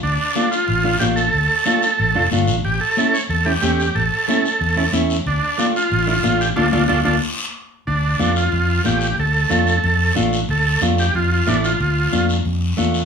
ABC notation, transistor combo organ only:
X:1
M:4/4
L:1/8
Q:1/4=184
K:Dm
V:1 name="Transistor combo organ"
D3 F3 G A- | A6 z2 | G A2 ^c A G3 | A2 A4 z2 |
D2 D F2 F2 G | [DFA] [DFA] [DFA] [DFA] z4 | D3 F3 G2 | A6 z2 |
A2 z G F F D F | F3 z4 z |]